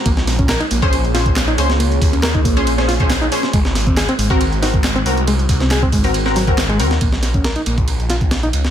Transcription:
<<
  \new Staff \with { instrumentName = "Synth stab" } { \time 4/4 \key bes \minor \tempo 4 = 138 r4. r16 <des' aes' c''>16 r8 <des' aes' c''>16 r8. <des' aes' c''>16 r16 | r4. r16 <des' aes' c''>16 r16 <des' aes' c''>8 <des' aes' c''>16 r8 <des' aes' c''>16 r16 | r4. r16 <c' ges' bes'>16 r8 <c' ges' bes'>16 r8. <c' ges' bes'>16 r16 | r4. r16 <c' ges' bes'>16 r16 <c' ges' bes'>8 <c' ges' bes'>16 r8 <c' ges' bes'>16 r16 |
r1 | }
  \new Staff \with { instrumentName = "Ambient pad" } { \time 4/4 \key bes \minor <bes f' aes' des''>1~ | <bes f' aes' des''>1 | <aes ees' ges' c''>1~ | <aes ees' ges' c''>1 |
r1 | }
  \new Staff \with { instrumentName = "Reed electric piano" } { \time 4/4 \key bes \minor bes16 r8 des'16 bes'16 ees'16 bes16 r8. f'16 r8 ees'16 r8 | bes16 r8 des'16 bes'16 ees'16 bes16 r8. f'16 r8 ees'16 r8 | aes16 r8 c'16 aes'16 c'16 aes16 r8. ees'16 r8 c'16 r8 | aes16 r8 c'16 aes'16 c'16 aes16 r8. ges16 r8 aes16 r8 |
bes16 r8 des'16 bes'16 ees'16 bes16 r8. f'16 r8 ees'16 r8 | }
  \new Staff \with { instrumentName = "Detuned saw bass" } { \clef bass \time 4/4 \key bes \minor bes,,4 r8 bes,,2 des,8~ | des,8 ees,4 bes,,2 r8 | aes,,4 r8 aes,,2 c,8~ | c,8 c,4 aes,,2 ees,8 |
bes,,4 r8 bes,,2 des,8 | }
  \new DrumStaff \with { instrumentName = "Drums" } \drummode { \time 4/4 <hh bd cymr>16 <hh sn>16 <hho cymr sn>16 <hh bd>16 <hc hh cymr sn>16 <hh cymr>16 <hho cymr>16 <hh bd>16 <hh cymr>16 hh16 <hho cymr sn>16 <hh bd>16 <hc hh cymr sn>16 hh16 <hho cymr>16 <hh sn>16 | <hh cymr>16 hh16 <hho bd cymr>16 <hh cymr>16 <hc hh cymr sn>16 <hh bd>16 <hho bd cymr>16 <hh cymr>16 <hh cymr>16 <hh sn>16 <hho cymr sn>16 <hh bd>16 <hc hh cymr sn>16 hh16 <hho cymr>16 <hh sn>16 | <hh bd cymr>16 <hh sn>16 <hho cymr sn>16 <hh bd>16 <hc hh cymr sn>16 <hh cymr>16 <hho cymr>16 <hh bd>16 <hh cymr>16 hh16 <hho cymr sn>16 <hh bd>16 <hc hh cymr sn>16 hh16 hho16 hh16 | <hh cymr>16 hh16 <hho bd cymr>16 <hh sn>16 <hc hh cymr sn>16 <hh bd>16 <hho bd cymr>16 <hho cymr>16 <hh cymr>16 <hh sn>16 <hho cymr sn>16 <hh bd>16 <hc hh cymr sn>16 hh16 <hho cymr>16 <hh sn>16 |
<hh bd cymr>16 <hh sn>16 <hh cymr sn>16 <hh bd>16 <hh cymr sn>16 <hh cymr>16 <hh cymr>16 <hh bd>16 <hh cymr>16 hh16 <hh cymr sn>16 <hh bd>16 <hh cymr sn>16 hh16 <hh cymr>16 <hh sn>16 | }
>>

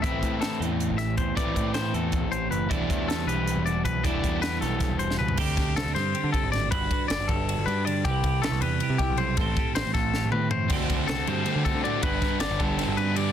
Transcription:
<<
  \new Staff \with { instrumentName = "Clean electric guitar" } { \time 7/8 \key g \major \tempo 4 = 158 e''4 a'8 r4 e''8 c''8 | d''4 c''8 a'4 c''8 b'8 | d''4 a'8 b'4 d''8 b'8 | d''4 b'8 a'4 c''8 b'8 |
g'4 a'8 c''4 a'8 d''8 | b'4 d''8 a'4 b'8 d''8 | g'4 a'8 b'4 g'8 c''8 | a'4 c''8 a'4 b'8 c''8 |
r4 a'8 c''4 a'8 d''8 | b'4 d''8 a'4 b'8 d''8 | }
  \new Staff \with { instrumentName = "Clean electric guitar" } { \time 7/8 \key g \major << { <c' g' b'>2~ <c' g' b'>8 g'4 | <c' g' b'>2~ <c' g' b'>8 g'4 | <d' fis' a'>2~ <d' fis' a'>8 fis'4 | <d' fis' a'>2~ <d' fis' a'>8 fis'4 |
<c' g' a'>8 g'8 c'4 g'8 c'4 | <d' fis' b'>8 fis'8 d'4 fis'8 d'4 | <e' g' b'>8 g'8 e'4 g'8 e'4 | <c' g' c''>8 g'8 c'4 g'8 c'4 |
<c' g' a'>4 c'4. c'4 | <d' fis' b'>8 fis'8 c'16 d'8. fis'8 c'16 d'8. | } \\ { <a, g>4. a4. e8 | a,4. a4. e8 | e4. g4. b,8 | e4. g4. b,8 |
d4. g4. a,8 | g,4. g4. d8 | c4. g4. g8 | a,4. a4. e8 |
d4. g4. a,8 | g,4. g4. d8 | } >> }
  \new Staff \with { instrumentName = "Overdriven electric guitar" } { \time 7/8 \key g \major <a, e a c' e'>2.~ <a, e a c' e'>8 | <a, e a c' e'>2.~ <a, e a c' e'>8 | <e g b e'>2.~ <e g b e'>8 | <e g b e'>2.~ <e g b e'>8 |
r2. r8 | r2. r8 | r2. r8 | r2. r8 |
<d a c' fis'>8 <a c' fis'>8 <d a c' fis'>8 <a c' fis'>8 <d a c' fis'>4 <d a c' fis'>8 | <g, d g b d'>8 <g b d'>8 <d g b d'>8 <g b d'>8 <g, d g b d'>4 <d g b d'>8 | }
  \new Staff \with { instrumentName = "Picked electric bass" } { \clef bass \time 7/8 \key g \major a,,16 a,,16 a,4 e,8. a,,8. e,8 | a,,16 a,,16 a,4 e,8. a,,8. fis,,8 | e,,16 e,,16 e,4 b,,8. e,,8. b,,8 | e,,16 e,,16 e,4 b,,8. e,,8. cis,8 |
d,4 c,16 d,16 g,8 r16 d16 r16 aes,,8. | g,,8 r8 g,,16 g,,16 g,,8. g,,16 g,4 | c,4 b,,16 c,16 e,8 r16 c16 r16 b,,8. | a,,8 r8 a,,16 a,,16 a,,8. a,,16 a,4 |
d,4 c,16 d,16 g,8 r16 d16 r16 d8. | g,,8 r8 g,,16 g,,16 g,,8. g,,16 g,4 | }
  \new DrumStaff \with { instrumentName = "Drums" } \drummode { \time 7/8 <hh bd>8 <hh bd>8 <hh sn>8 hh8 hh8 <hh sn>8 <hh bd>8 | <hh bd>8 <hh bd>8 <hh sn>8 hh8 <hh bd>8 hh8 hh8 | <hh bd>8 <hh bd>8 <hh sn>8 hh8 hh8 hh8 <hh bd>8 | <hh bd>8 <hh bd>8 <hh sn>8 <hh sn>8 <hh bd sn>8 hh16 sn8 tomfh16 |
<cymc bd>8 <bd cymr sn>8 <cymr sn>8 <cymr sn>8 cymr8 <bd cymr>8 <cymr sn>8 | <bd cymr>8 <bd cymr>8 <cymr sn>8 <bd cymr>8 cymr8 cymr8 cymr8 | <bd cymr>8 <bd cymr>8 <cymr sn>8 cymr8 cymr8 <bd cymr>8 cymr8 | <bd cymr>8 <bd cymr>8 <cymr sn>8 <bd cymr sn>8 sn8 toml8 tomfh8 |
<cymc bd cymr>8 <bd cymr>8 <cymr sn>8 cymr8 cymr8 <bd cymr>8 cymr8 | <bd cymr>8 <bd cymr sn>8 <cymr sn>8 <bd cymr>8 <cymr sn>8 cymr8 cymr8 | }
>>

